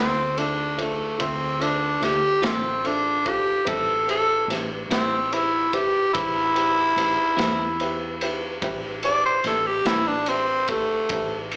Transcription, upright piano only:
0.00 0.26 F4 medium
0.00 0.27 A4 soft
0.00 0.27 C5 soft
0.00 0.27 E5 medium
0.36 0.68 F4 soft
0.36 0.68 A4 soft
0.36 0.68 C5 soft
0.36 0.68 E5 soft
0.76 1.08 F4 medium
0.76 1.09 A4 soft
0.76 1.09 C5 soft
0.76 1.09 E5 medium
1.18 1.50 F4 medium
1.18 1.50 A4 medium
1.18 1.51 C5 soft
1.18 1.51 E5 medium
1.59 1.91 F4 soft
1.59 1.91 A4 soft
1.59 1.92 C5 soft
1.59 1.92 E5 medium
2.00 2.32 F4 soft
2.00 2.32 A4 soft
2.00 2.33 C5 soft
2.00 2.33 E5 medium
2.41 2.73 F4 medium
2.41 2.74 A4 soft
2.41 2.74 C5 soft
2.41 2.74 E5 medium
2.84 3.15 F4 medium
2.84 3.16 A4 soft
2.84 3.16 C5 medium
2.84 3.16 E5 medium
3.25 3.57 F4 medium
3.25 3.57 A4 medium
3.25 3.57 C5 soft
3.25 3.57 F5 medium
3.65 3.97 G4 medium
3.65 3.97 B4 medium
3.65 3.98 C5 medium
3.65 3.98 E5 medium
4.07 4.39 G4 soft
4.07 4.39 B4 soft
4.07 4.39 C5 soft
4.07 4.40 E5 medium
4.49 4.81 G4 medium
4.49 4.81 B4 soft
4.49 4.81 C5 soft
4.49 4.81 E5 medium
4.91 5.22 G4 soft
4.91 5.22 B4 soft
4.91 5.23 C5 soft
4.91 5.23 E5 medium
5.32 5.63 G4 soft
5.32 5.63 B4 soft
5.32 5.64 C5 soft
5.32 5.64 E5 soft
5.73 6.04 G4 soft
5.73 6.05 B4 soft
5.73 6.05 C5 soft
5.73 6.05 E5 medium
6.14 6.46 G4 medium
6.14 6.46 B4 soft
6.14 6.46 C5 soft
6.14 6.46 E5 medium
6.55 6.87 G4 medium
6.55 6.87 B4 soft
6.55 6.87 C5 soft
6.55 6.87 E5 medium
6.97 7.28 G4 soft
6.97 7.29 B4 soft
6.97 7.29 C5 soft
6.97 7.29 E5 medium
7.38 7.69 G4 medium
7.38 7.70 B4 medium
7.38 7.70 C5 medium
7.38 7.70 E5 medium
7.81 8.11 G4 medium
7.81 8.12 B4 medium
7.81 8.12 C5 medium
7.81 8.12 E5 medium
8.22 8.53 G4 medium
8.22 8.53 B4 medium
8.22 8.53 C5 medium
8.22 8.53 E5 medium
8.63 8.94 G4 medium
8.63 8.94 B4 medium
8.63 8.94 C5 medium
8.63 8.94 E5 medium
9.03 9.34 G4 medium
9.03 9.35 B4 soft
9.03 9.35 C5 soft
9.03 9.35 E5 medium
9.46 9.77 G4 soft
9.46 9.77 B4 soft
9.46 9.77 C5 soft
9.46 9.77 E5 medium
9.85 10.17 G4 soft
9.85 10.17 B4 soft
9.85 10.17 C5 soft
9.85 10.17 G5 medium
10.28 10.59 G4 soft
10.28 10.59 B4 soft
10.28 10.59 C5 soft
10.28 10.59 E5 medium
10.69 11.00 G4 soft
10.69 11.00 B4 soft
10.69 11.00 C5 soft
10.69 11.00 E5 medium
11.12 11.42 G4 soft
11.12 11.42 B4 soft
11.12 11.42 C5 soft
11.12 11.43 E5 medium

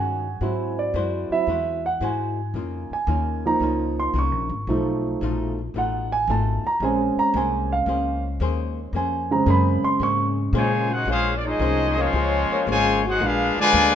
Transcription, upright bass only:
0.00 0.39 G2 medium
0.41 0.93 G#2 medium
0.94 1.28 F#2 medium
1.30 muted upright bass stroke soft
1.47 1.99 E2 medium
2.01 2.53 G#2 medium
2.54 2.88 F2 medium
2.91 muted upright bass stroke soft
3.07 3.59 D#2 medium
3.60 4.12 C#2 medium
4.14 4.31 C2 medium
4.32 4.49 A#1 medium
4.49 4.66 G#1 medium
4.67 5.19 B1 medium
5.21 5.73 A#1 medium
5.74 6.26 A1 medium
6.27 6.62 G#1 medium
6.64 muted upright bass stroke soft
6.80 7.15 A#1 medium
7.17 muted upright bass stroke soft
7.34 7.85 C2 loud
7.86 8.39 C#2 medium
8.40 8.92 D#2 medium
8.93 9.45 F2 medium
9.46 9.81 F#2 medium
9.83 muted upright bass stroke soft
10.00 10.52 G#2 medium
10.53 11.05 A#2 medium
11.05 11.58 A#1 medium
11.60 12.12 C2 medium
12.13 12.47 C#2 medium
12.50 muted upright bass stroke soft
12.67 13.19 G#1 medium
13.20 13.54 A#1 medium
13.57 muted upright bass stroke soft
13.73 13.95 D2 loud

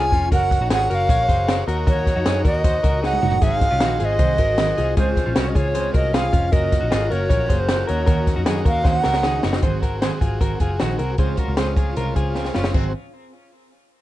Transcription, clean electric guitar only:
0.00 0.12 F4 medium
0.00 0.13 G#4 medium
0.13 0.32 C#4 medium
0.13 0.32 F4 medium
0.33 0.60 F#4 medium
0.33 0.59 A#4 loud
0.62 0.71 D#4 medium
0.62 0.71 F#4 medium
0.71 0.90 F4 medium
0.71 0.90 G#4 medium
0.90 1.10 F#4 medium
0.90 1.09 A#4 medium
1.10 1.29 A#4 medium
1.10 1.28 C#5 medium
1.29 1.65 G#4 medium
1.29 1.65 C5 medium
1.68 1.87 F#4 medium
1.68 1.86 A#4 medium
1.87 2.15 F#4 medium
1.87 2.14 A#4 loud
2.16 2.26 D#4 medium
2.16 2.25 F#4 medium
2.26 2.46 D#4 medium
2.26 2.45 G#4 medium
2.45 2.64 F#4 medium
2.45 2.64 A#4 medium
2.64 2.83 F#4 medium
2.64 2.83 C5 medium
2.83 3.02 F#4 medium
2.83 3.03 A#4 medium
3.03 3.22 D#4 medium
3.03 3.22 G#4 medium
3.22 3.42 D#4 medium
3.22 3.41 F#4 medium
3.42 3.70 D#4 medium
3.42 3.69 G#4 loud
3.71 3.81 C#4 medium
3.71 3.80 F4 medium
3.80 4.00 D#4 medium
3.80 3.99 F#4 medium
4.00 4.20 F4 medium
4.00 4.18 G#4 medium
4.19 4.39 G#4 medium
4.19 4.39 C5 medium
4.39 4.75 F#4 medium
4.39 4.75 A#4 medium
4.77 4.97 F4 medium
4.77 4.96 G#4 medium
4.97 5.25 F4 medium
4.97 5.24 G#4 loud
5.26 5.35 C#4 medium
5.26 5.35 F4 medium
5.35 5.55 C#4 medium
5.35 5.55 F#4 medium
5.55 5.75 F4 medium
5.55 5.74 G#4 medium
5.75 5.93 G#4 medium
5.75 5.94 C5 medium
5.94 6.13 F#4 medium
5.94 6.13 A#4 medium
6.14 6.32 F4 medium
6.14 6.33 G#4 medium
6.33 6.53 C#4 medium
6.33 6.52 F4 medium
6.52 6.79 F#4 medium
6.52 6.80 A#4 loud
6.81 6.91 D#4 medium
6.81 6.90 F#4 medium
6.91 7.11 F4 medium
6.91 7.10 G#4 medium
7.10 7.30 F#4 medium
7.10 7.30 A#4 medium
7.30 7.49 A#4 medium
7.30 7.48 C#5 medium
7.49 7.86 G#4 medium
7.49 7.86 C5 medium
7.87 8.06 F#4 medium
7.87 8.05 A#4 medium
8.06 8.35 F#4 medium
8.06 8.34 A#4 loud
8.36 8.45 D#4 medium
8.36 8.45 F#4 medium
8.46 8.66 D#4 medium
8.46 8.65 G#4 medium
8.65 8.84 F#4 medium
8.65 8.83 A#4 medium
8.84 9.03 F#4 medium
8.84 9.03 C5 medium
9.03 9.23 F#4 medium
9.03 9.24 A#4 medium
9.24 9.43 D#4 medium
9.24 9.43 G#4 medium
9.44 9.63 D#4 medium
9.44 9.63 F#4 medium
9.63 9.83 G#4 medium
9.63 9.82 C5 medium
9.82 10.02 F#4 medium
9.82 10.01 A#4 medium
10.02 10.20 G#4 medium
10.02 10.21 C5 medium
10.21 10.41 F4 medium
10.21 10.40 G#4 medium
10.41 10.61 F#4 medium
10.41 10.60 A#4 medium
10.61 10.79 F4 medium
10.61 10.80 G#4 medium
10.79 11.00 D#4 medium
10.79 10.98 F#4 medium
10.99 11.19 F#4 medium
10.99 11.19 A#4 medium
11.19 11.39 G#4 medium
11.19 11.38 C5 medium
11.39 11.58 F#4 medium
11.39 11.58 A#4 medium
11.58 11.76 G#4 medium
11.58 11.77 C5 medium
11.77 11.97 F4 medium
11.77 11.97 G#4 medium
11.97 12.16 F4 medium
11.97 12.16 A#4 medium
12.16 12.53 F4 medium
12.16 12.53 G#4 medium
12.55 12.74 C#4 medium
12.55 12.75 F4 medium
12.75 12.93 C4 medium

